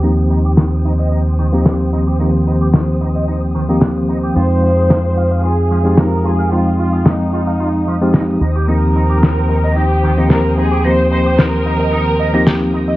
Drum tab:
SD |--o---o-|--o---o-|--o---o-|--o---o-|

SD |--o---o-|--o---o-|